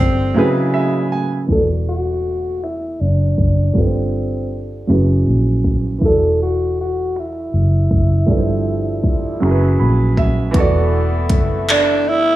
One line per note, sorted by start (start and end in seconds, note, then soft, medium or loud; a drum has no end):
0.00 0.32 G1 medium
0.00 0.35 G3 medium
0.00 0.75 C4 medium
0.00 0.35 D4 medium
0.00 0.36 F4 medium
0.00 0.36 A4 medium
0.00 0.37 C5 medium
0.34 1.49 C#3 medium
0.34 1.10 C#3 medium
0.34 1.48 F#3 medium
0.34 1.10 G#3 medium
0.34 1.10 E4 medium
0.34 1.49 E4 medium
0.34 1.10 G#4 medium
0.34 1.50 G#4 medium
0.39 1.50 B4 medium
0.74 1.09 E5 medium
1.12 1.47 G#5 medium
1.46 2.96 E1 medium
1.46 3.70 E3 medium
1.46 3.71 B3 soft
1.46 kick loud
1.46 closed hi-hat medium
1.50 3.72 F#4 soft
1.50 3.73 A4 soft
1.50 1.68 A4 medium
1.54 3.74 D5 medium
1.89 2.59 F#4 loud
2.24 closed hi-hat medium
2.63 3.02 E4 medium
2.63 finger snap medium
2.63 closed hi-hat medium
3.01 3.34 F#1 medium
3.01 3.79 D4 medium
3.38 3.72 F#1 medium
3.38 kick medium
3.38 closed hi-hat medium
3.74 4.85 G1 loud
3.74 4.88 G3 medium
3.74 4.61 C4 medium
3.74 4.88 D4 medium
3.74 4.89 F4 medium
3.74 4.89 A4 medium
3.74 kick loud
3.74 closed hi-hat medium
3.78 3.83 B4 medium
3.84 4.93 C5 medium
4.50 closed hi-hat medium
4.87 5.23 F#1 loud
4.87 6.01 F#3 medium
4.87 6.01 C#4 medium
4.87 5.99 E4 medium
4.87 6.03 G#4 medium
4.87 finger snap loud
4.87 closed hi-hat medium
4.92 6.03 B4 medium
5.27 5.98 A#1 medium
5.64 kick medium
5.64 closed hi-hat medium
5.98 8.22 E3 medium
5.98 8.23 E4 medium
5.98 kick loud
5.98 closed hi-hat medium
6.02 7.49 E1 medium
6.02 8.24 F#4 medium
6.02 8.26 A4 medium
6.02 6.38 A4 loud
6.07 8.27 D5 medium
6.42 6.76 F#4 medium
6.76 closed hi-hat medium
6.81 7.21 F#4 medium
7.16 9.81 E4 medium
7.16 finger snap loud
7.16 closed hi-hat medium
7.54 7.87 F#1 medium
7.91 8.25 F#1 medium
7.91 kick medium
7.91 closed hi-hat medium
8.26 9.38 G1 loud
8.26 9.42 F3 medium
8.26 9.40 G3 medium
8.26 9.41 D4 medium
8.26 9.42 A4 medium
8.26 kick loud
8.26 closed hi-hat medium
8.31 8.36 B4 medium
8.38 9.46 C5 medium
9.03 kick medium
9.03 closed hi-hat medium
9.40 9.76 F#1 loud
9.40 10.54 F#3 medium
9.40 10.54 C#4 medium
9.40 10.55 E4 medium
9.40 10.55 G#4 medium
9.40 finger snap loud
9.40 closed hi-hat medium
9.44 9.49 A#4 medium
9.51 10.59 B4 medium
9.80 10.51 A#1 medium
9.80 10.14 B5 medium
10.17 10.52 E5 medium
10.17 kick medium
10.17 closed hi-hat medium
10.51 12.36 E3 medium
10.51 12.36 A3 medium
10.51 12.36 B3 medium
10.51 12.36 E4 medium
10.51 kick loud
10.51 closed hi-hat medium
10.55 11.31 E1 loud
10.55 12.36 F#4 medium
10.55 12.36 A4 medium
10.60 12.36 D5 medium
11.30 12.36 F#1 medium
11.30 kick loud
11.30 closed hi-hat medium
11.69 12.10 D4 medium
11.69 clap loud
11.69 closed hi-hat medium
12.09 12.36 E4 medium